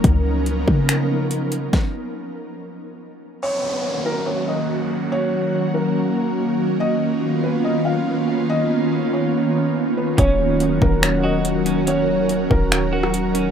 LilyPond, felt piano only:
\new Staff \with { instrumentName = "Felt piano" } { \time 4/4 \key ees \minor \tempo 4 = 142 r1 | r1 | des''4. bes'8 des''8 ees''4. | des''4. bes'2~ bes'8 |
ees''4. ces''8 ees''8 f''4. | ees''4. des''2 ces''8 | des''4. bes'8 des''8 ees''4. | des''4. bes'2~ bes'8 | }